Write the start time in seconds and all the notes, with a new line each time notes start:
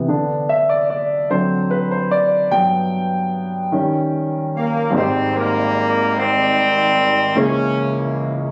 Already playing: C3 E3 B3
0.08 D3 B3 D4
0.49 E5
0.69 D5
0.90 D5
1.30 D3 F#3 C4 C5
1.71 B4
1.91 C5
2.11 D5
2.51 G2 F#3 B3 G5
3.72 D#3 G3 C#4
4.56 A#3
4.90 G#1 G#2 G3 C4 D#4
4.95 D#3 G3 C4 G4 C5
5.35 D#3 G3 A#3
6.18 D#3 G3 C4
7.35 C#2 C#3 E3 A#3 C#4 E4 G#4 C5
7.45 C#5